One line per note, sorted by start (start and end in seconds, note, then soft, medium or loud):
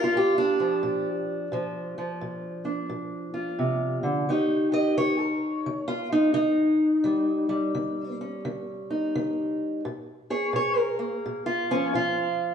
0.00 0.37 D4 soft
0.00 0.36 F4 medium
0.00 0.16 A#4 medium
0.15 0.79 A#2 medium
0.15 1.08 G4 medium
0.38 2.64 D4 medium
0.60 1.52 F3 soft
0.83 1.47 A#2 medium
1.52 2.16 A#2 medium
1.52 1.96 F3 soft
1.98 4.30 F3 soft
2.21 2.85 A#2 medium
2.65 4.26 D4 soft
2.89 3.54 A#2 medium
3.34 4.26 F4 soft
3.59 4.03 C3 medium
4.03 4.29 D3 medium
4.29 4.93 D#3 medium
4.29 5.87 D#4 soft
4.29 4.72 G4 soft
4.29 4.73 C#5 soft
4.72 5.20 G4 soft
4.72 4.97 D#5 medium
4.97 5.62 D#3 medium
4.97 5.90 C#5 medium
5.20 6.59 A#4 medium
5.66 6.31 D#3 medium
5.88 6.12 F4 medium
6.12 6.32 D#4 medium
6.34 7.00 D#3 medium
6.34 8.18 D#4 medium
7.04 7.69 D#3 medium
7.04 7.48 G3 soft
7.49 9.81 G3 soft
7.75 8.40 D#3 medium
8.21 9.82 C#4 soft
8.45 9.10 D#3 medium
8.90 9.82 D#4 soft
9.15 9.80 D#3 medium
9.85 10.49 A#2 medium
10.30 11.46 G#4 soft
10.30 10.54 C#5 medium
10.53 11.18 A#2 medium
10.53 10.77 C#5 medium
10.77 12.17 A#4 medium
10.99 11.71 A#3 soft
11.26 11.89 A#2 medium
11.46 11.93 F4 medium
11.71 12.54 F3 soft
11.71 11.94 C#4 medium
11.94 12.54 A#2 medium
11.94 12.54 F4 medium